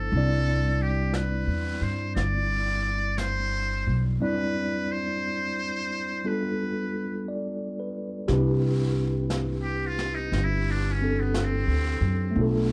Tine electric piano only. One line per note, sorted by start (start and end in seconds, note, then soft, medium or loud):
0.00 0.11 F3 soft
0.00 0.11 B3 soft
0.00 0.11 D4 soft
0.00 0.12 E4 soft
0.00 0.12 A4 medium
0.12 4.19 G3 soft
0.12 4.19 C4 soft
0.12 4.19 D4 soft
0.12 4.20 E4 soft
0.17 4.21 D5 soft
4.20 6.23 G3 soft
4.20 6.24 C4 soft
4.20 6.24 D4 soft
4.20 6.24 E4 soft
4.20 6.24 D5 soft
6.25 8.29 G3 soft
6.25 8.29 B3 soft
6.25 8.29 D4 soft
6.25 8.29 F4 soft
6.25 8.30 A4 soft
7.28 8.09 D5 soft
7.80 8.32 B4 soft
8.28 11.00 C4 soft
8.28 11.01 D4 soft
8.28 12.35 G4 medium
8.32 12.37 E4 soft
8.32 12.38 B4 medium
11.02 12.36 C4 soft
11.02 12.35 D4 soft
11.02 12.37 A4 soft
12.31 12.72 A3 soft
12.31 12.72 B3 soft
12.36 12.72 D4 soft
12.36 12.72 F4 medium
12.41 12.72 A4 medium